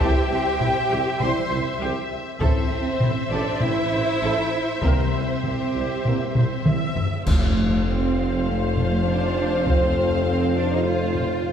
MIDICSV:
0, 0, Header, 1, 13, 480
1, 0, Start_track
1, 0, Tempo, 600000
1, 9, Time_signature, 4, 2, 24, 8
1, 2889, Tempo, 609756
1, 5769, Tempo, 598205
1, 9183, End_track
2, 0, Start_track
2, 0, Title_t, "Violin section"
2, 0, Program_c, 0, 48
2, 0, Note_on_c, 0, 76, 62
2, 1889, Note_off_c, 0, 76, 0
2, 1919, Note_on_c, 0, 76, 69
2, 5573, Note_off_c, 0, 76, 0
2, 5765, Note_on_c, 0, 77, 67
2, 9183, Note_off_c, 0, 77, 0
2, 9183, End_track
3, 0, Start_track
3, 0, Title_t, "Violin section"
3, 0, Program_c, 1, 48
3, 18, Note_on_c, 1, 79, 99
3, 963, Note_on_c, 1, 84, 82
3, 972, Note_off_c, 1, 79, 0
3, 1445, Note_off_c, 1, 84, 0
3, 1927, Note_on_c, 1, 72, 82
3, 2616, Note_off_c, 1, 72, 0
3, 2646, Note_on_c, 1, 74, 70
3, 2888, Note_off_c, 1, 74, 0
3, 2890, Note_on_c, 1, 76, 82
3, 3846, Note_off_c, 1, 76, 0
3, 3848, Note_on_c, 1, 72, 70
3, 5530, Note_off_c, 1, 72, 0
3, 5764, Note_on_c, 1, 72, 67
3, 9183, Note_off_c, 1, 72, 0
3, 9183, End_track
4, 0, Start_track
4, 0, Title_t, "String section"
4, 0, Program_c, 2, 48
4, 5763, Note_on_c, 2, 65, 74
4, 5768, Note_on_c, 2, 57, 72
4, 5768, Note_on_c, 2, 72, 76
4, 5769, Note_on_c, 2, 77, 71
4, 9183, Note_off_c, 2, 57, 0
4, 9183, Note_off_c, 2, 65, 0
4, 9183, Note_off_c, 2, 72, 0
4, 9183, Note_off_c, 2, 77, 0
4, 9183, End_track
5, 0, Start_track
5, 0, Title_t, "Viola section"
5, 0, Program_c, 3, 48
5, 0, Note_on_c, 3, 72, 75
5, 13, Note_on_c, 3, 67, 78
5, 234, Note_off_c, 3, 67, 0
5, 247, Note_on_c, 3, 60, 66
5, 311, Note_off_c, 3, 60, 0
5, 484, Note_on_c, 3, 64, 59
5, 548, Note_off_c, 3, 64, 0
5, 725, Note_on_c, 3, 67, 75
5, 949, Note_off_c, 3, 67, 0
5, 960, Note_on_c, 3, 60, 60
5, 1024, Note_off_c, 3, 60, 0
5, 1206, Note_on_c, 3, 64, 54
5, 1270, Note_off_c, 3, 64, 0
5, 1443, Note_on_c, 3, 67, 76
5, 1667, Note_off_c, 3, 67, 0
5, 1896, Note_off_c, 3, 72, 0
5, 1921, Note_on_c, 3, 69, 82
5, 1923, Note_on_c, 3, 72, 76
5, 2146, Note_off_c, 3, 69, 0
5, 2164, Note_on_c, 3, 60, 57
5, 2228, Note_off_c, 3, 60, 0
5, 2403, Note_on_c, 3, 64, 55
5, 2467, Note_off_c, 3, 64, 0
5, 2649, Note_on_c, 3, 69, 67
5, 2872, Note_off_c, 3, 69, 0
5, 2884, Note_on_c, 3, 60, 59
5, 2947, Note_off_c, 3, 60, 0
5, 3131, Note_on_c, 3, 64, 54
5, 3194, Note_off_c, 3, 64, 0
5, 3369, Note_on_c, 3, 69, 71
5, 3590, Note_off_c, 3, 69, 0
5, 3847, Note_on_c, 3, 70, 66
5, 4070, Note_off_c, 3, 70, 0
5, 4085, Note_on_c, 3, 64, 50
5, 4148, Note_off_c, 3, 64, 0
5, 4246, Note_off_c, 3, 72, 0
5, 4321, Note_on_c, 3, 67, 78
5, 5015, Note_off_c, 3, 67, 0
5, 5047, Note_on_c, 3, 72, 57
5, 5283, Note_off_c, 3, 72, 0
5, 5293, Note_on_c, 3, 76, 68
5, 5768, Note_off_c, 3, 76, 0
5, 5773, Note_on_c, 3, 72, 66
5, 9183, Note_off_c, 3, 72, 0
5, 9183, End_track
6, 0, Start_track
6, 0, Title_t, "French horn section"
6, 0, Program_c, 4, 60
6, 16, Note_on_c, 4, 60, 76
6, 18, Note_on_c, 4, 64, 76
6, 180, Note_off_c, 4, 60, 0
6, 182, Note_off_c, 4, 64, 0
6, 973, Note_on_c, 4, 60, 72
6, 973, Note_on_c, 4, 64, 78
6, 1138, Note_off_c, 4, 64, 0
6, 1139, Note_off_c, 4, 60, 0
6, 1931, Note_on_c, 4, 60, 73
6, 1935, Note_on_c, 4, 64, 73
6, 2096, Note_off_c, 4, 60, 0
6, 2099, Note_off_c, 4, 64, 0
6, 2883, Note_on_c, 4, 60, 69
6, 2888, Note_on_c, 4, 64, 65
6, 3051, Note_off_c, 4, 60, 0
6, 3054, Note_off_c, 4, 64, 0
6, 3837, Note_on_c, 4, 67, 60
6, 3839, Note_on_c, 4, 60, 56
6, 4008, Note_off_c, 4, 67, 0
6, 4009, Note_off_c, 4, 60, 0
6, 4796, Note_on_c, 4, 60, 60
6, 4798, Note_on_c, 4, 67, 63
6, 4968, Note_off_c, 4, 60, 0
6, 4970, Note_off_c, 4, 67, 0
6, 5746, Note_on_c, 4, 72, 77
6, 5750, Note_on_c, 4, 69, 82
6, 9183, Note_off_c, 4, 69, 0
6, 9183, Note_off_c, 4, 72, 0
6, 9183, End_track
7, 0, Start_track
7, 0, Title_t, "Cello section"
7, 0, Program_c, 5, 48
7, 4, Note_on_c, 5, 67, 99
7, 945, Note_off_c, 5, 67, 0
7, 968, Note_on_c, 5, 72, 87
7, 1447, Note_off_c, 5, 72, 0
7, 1924, Note_on_c, 5, 60, 83
7, 2614, Note_off_c, 5, 60, 0
7, 2653, Note_on_c, 5, 62, 78
7, 2891, Note_off_c, 5, 62, 0
7, 2891, Note_on_c, 5, 64, 93
7, 3846, Note_off_c, 5, 64, 0
7, 3847, Note_on_c, 5, 60, 72
7, 5498, Note_off_c, 5, 60, 0
7, 5770, Note_on_c, 5, 57, 83
7, 6220, Note_off_c, 5, 57, 0
7, 6249, Note_on_c, 5, 60, 88
7, 6729, Note_off_c, 5, 60, 0
7, 6730, Note_on_c, 5, 57, 74
7, 7210, Note_on_c, 5, 62, 81
7, 7211, Note_off_c, 5, 57, 0
7, 7680, Note_off_c, 5, 62, 0
7, 7688, Note_on_c, 5, 60, 72
7, 8160, Note_off_c, 5, 60, 0
7, 8169, Note_on_c, 5, 60, 85
7, 8403, Note_off_c, 5, 60, 0
7, 8410, Note_on_c, 5, 62, 80
7, 8529, Note_off_c, 5, 62, 0
7, 8539, Note_on_c, 5, 63, 88
7, 8651, Note_on_c, 5, 65, 80
7, 8653, Note_off_c, 5, 63, 0
7, 9183, Note_off_c, 5, 65, 0
7, 9183, End_track
8, 0, Start_track
8, 0, Title_t, "Trombone section"
8, 0, Program_c, 6, 61
8, 0, Note_on_c, 6, 52, 74
8, 0, Note_on_c, 6, 55, 66
8, 167, Note_off_c, 6, 55, 0
8, 169, Note_off_c, 6, 52, 0
8, 955, Note_on_c, 6, 55, 66
8, 956, Note_on_c, 6, 52, 67
8, 1126, Note_off_c, 6, 55, 0
8, 1127, Note_off_c, 6, 52, 0
8, 1925, Note_on_c, 6, 52, 70
8, 1926, Note_on_c, 6, 57, 71
8, 2092, Note_off_c, 6, 52, 0
8, 2093, Note_off_c, 6, 57, 0
8, 2874, Note_on_c, 6, 57, 62
8, 2878, Note_on_c, 6, 52, 57
8, 3045, Note_off_c, 6, 57, 0
8, 3047, Note_off_c, 6, 52, 0
8, 3834, Note_on_c, 6, 52, 60
8, 3838, Note_on_c, 6, 58, 63
8, 4006, Note_off_c, 6, 52, 0
8, 4009, Note_off_c, 6, 58, 0
8, 4795, Note_on_c, 6, 58, 56
8, 4801, Note_on_c, 6, 52, 55
8, 4967, Note_off_c, 6, 58, 0
8, 4971, Note_off_c, 6, 52, 0
8, 5765, Note_on_c, 6, 60, 76
8, 5769, Note_on_c, 6, 53, 77
8, 9183, Note_off_c, 6, 53, 0
8, 9183, Note_off_c, 6, 60, 0
8, 9183, End_track
9, 0, Start_track
9, 0, Title_t, "Timpani"
9, 0, Program_c, 7, 47
9, 3844, Note_on_c, 7, 48, 72
9, 4536, Note_off_c, 7, 48, 0
9, 9183, End_track
10, 0, Start_track
10, 0, Title_t, "Double bass section"
10, 0, Program_c, 8, 48
10, 9, Note_on_c, 8, 36, 81
10, 73, Note_off_c, 8, 36, 0
10, 244, Note_on_c, 8, 36, 59
10, 308, Note_off_c, 8, 36, 0
10, 487, Note_on_c, 8, 36, 58
10, 551, Note_off_c, 8, 36, 0
10, 728, Note_on_c, 8, 36, 82
10, 792, Note_off_c, 8, 36, 0
10, 968, Note_on_c, 8, 36, 58
10, 1032, Note_off_c, 8, 36, 0
10, 1214, Note_on_c, 8, 36, 66
10, 1278, Note_off_c, 8, 36, 0
10, 1447, Note_on_c, 8, 36, 72
10, 1511, Note_off_c, 8, 36, 0
10, 1927, Note_on_c, 8, 33, 84
10, 1991, Note_off_c, 8, 33, 0
10, 2169, Note_on_c, 8, 33, 51
10, 2233, Note_off_c, 8, 33, 0
10, 2411, Note_on_c, 8, 33, 50
10, 2475, Note_off_c, 8, 33, 0
10, 2646, Note_on_c, 8, 33, 80
10, 2710, Note_off_c, 8, 33, 0
10, 2891, Note_on_c, 8, 33, 55
10, 2954, Note_off_c, 8, 33, 0
10, 3129, Note_on_c, 8, 33, 55
10, 3192, Note_off_c, 8, 33, 0
10, 3370, Note_on_c, 8, 33, 66
10, 3433, Note_off_c, 8, 33, 0
10, 3844, Note_on_c, 8, 36, 69
10, 3907, Note_off_c, 8, 36, 0
10, 4085, Note_on_c, 8, 36, 41
10, 4148, Note_off_c, 8, 36, 0
10, 4327, Note_on_c, 8, 36, 47
10, 4390, Note_off_c, 8, 36, 0
10, 4569, Note_on_c, 8, 36, 69
10, 4632, Note_off_c, 8, 36, 0
10, 4809, Note_on_c, 8, 36, 47
10, 4872, Note_off_c, 8, 36, 0
10, 5048, Note_on_c, 8, 36, 45
10, 5111, Note_off_c, 8, 36, 0
10, 5284, Note_on_c, 8, 36, 64
10, 5347, Note_off_c, 8, 36, 0
10, 5765, Note_on_c, 8, 41, 66
10, 9183, Note_off_c, 8, 41, 0
10, 9183, End_track
11, 0, Start_track
11, 0, Title_t, "Tuba"
11, 0, Program_c, 10, 58
11, 9, Note_on_c, 10, 36, 79
11, 105, Note_off_c, 10, 36, 0
11, 244, Note_on_c, 10, 36, 53
11, 341, Note_off_c, 10, 36, 0
11, 489, Note_on_c, 10, 36, 54
11, 584, Note_off_c, 10, 36, 0
11, 730, Note_on_c, 10, 36, 69
11, 825, Note_off_c, 10, 36, 0
11, 970, Note_on_c, 10, 36, 53
11, 1065, Note_off_c, 10, 36, 0
11, 1204, Note_on_c, 10, 36, 56
11, 1301, Note_off_c, 10, 36, 0
11, 1443, Note_on_c, 10, 36, 78
11, 1539, Note_off_c, 10, 36, 0
11, 1928, Note_on_c, 10, 33, 77
11, 2023, Note_off_c, 10, 33, 0
11, 2162, Note_on_c, 10, 33, 47
11, 2259, Note_off_c, 10, 33, 0
11, 2406, Note_on_c, 10, 33, 53
11, 2502, Note_off_c, 10, 33, 0
11, 2648, Note_on_c, 10, 33, 75
11, 2745, Note_off_c, 10, 33, 0
11, 2890, Note_on_c, 10, 33, 49
11, 2985, Note_off_c, 10, 33, 0
11, 3130, Note_on_c, 10, 33, 52
11, 3224, Note_off_c, 10, 33, 0
11, 3361, Note_on_c, 10, 33, 64
11, 3457, Note_off_c, 10, 33, 0
11, 3847, Note_on_c, 10, 36, 69
11, 3943, Note_off_c, 10, 36, 0
11, 4093, Note_on_c, 10, 36, 47
11, 4188, Note_off_c, 10, 36, 0
11, 4333, Note_on_c, 10, 36, 49
11, 4428, Note_off_c, 10, 36, 0
11, 4572, Note_on_c, 10, 36, 64
11, 4667, Note_off_c, 10, 36, 0
11, 4812, Note_on_c, 10, 36, 44
11, 4907, Note_off_c, 10, 36, 0
11, 5054, Note_on_c, 10, 36, 45
11, 5149, Note_off_c, 10, 36, 0
11, 5298, Note_on_c, 10, 36, 54
11, 5392, Note_off_c, 10, 36, 0
11, 5772, Note_on_c, 10, 29, 68
11, 9183, Note_off_c, 10, 29, 0
11, 9183, End_track
12, 0, Start_track
12, 0, Title_t, "Taiko and cinematic ensemble drums"
12, 7, Note_on_c, 9, 41, 84
12, 87, Note_off_c, 9, 41, 0
12, 484, Note_on_c, 9, 45, 60
12, 564, Note_off_c, 9, 45, 0
12, 965, Note_on_c, 9, 45, 50
12, 1045, Note_off_c, 9, 45, 0
12, 1925, Note_on_c, 9, 41, 86
12, 2005, Note_off_c, 9, 41, 0
12, 2401, Note_on_c, 9, 45, 60
12, 2481, Note_off_c, 9, 45, 0
12, 2883, Note_on_c, 9, 45, 51
12, 2962, Note_off_c, 9, 45, 0
12, 3839, Note_on_c, 9, 41, 84
12, 3918, Note_off_c, 9, 41, 0
12, 4326, Note_on_c, 9, 45, 54
12, 4404, Note_off_c, 9, 45, 0
12, 4808, Note_on_c, 9, 45, 52
12, 4887, Note_off_c, 9, 45, 0
12, 5045, Note_on_c, 9, 45, 76
12, 5124, Note_off_c, 9, 45, 0
12, 5286, Note_on_c, 9, 47, 79
12, 5365, Note_off_c, 9, 47, 0
12, 5525, Note_on_c, 9, 43, 84
12, 5604, Note_off_c, 9, 43, 0
12, 5770, Note_on_c, 9, 41, 88
12, 5851, Note_off_c, 9, 41, 0
12, 6972, Note_on_c, 9, 45, 45
12, 7052, Note_off_c, 9, 45, 0
12, 7690, Note_on_c, 9, 41, 76
12, 7770, Note_off_c, 9, 41, 0
12, 8883, Note_on_c, 9, 45, 44
12, 8963, Note_off_c, 9, 45, 0
12, 9183, End_track
13, 0, Start_track
13, 0, Title_t, "Drums"
13, 5767, Note_on_c, 9, 35, 76
13, 5767, Note_on_c, 9, 49, 71
13, 5847, Note_off_c, 9, 35, 0
13, 5847, Note_off_c, 9, 49, 0
13, 9183, End_track
0, 0, End_of_file